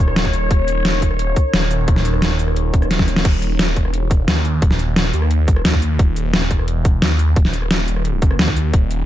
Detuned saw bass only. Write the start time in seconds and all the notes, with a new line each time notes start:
0.00 D#1
0.51 D#1
1.54 D#1
2.91 D#1
3.25 D#1
3.76 E1
4.28 D#2
4.62 D#1
5.14 D#2
5.65 D#2
5.99 D#1
6.51 E1
7.02 D#2
7.36 D#1
7.88 D#1
8.22 F#1
8.39 D#2
8.74 D#1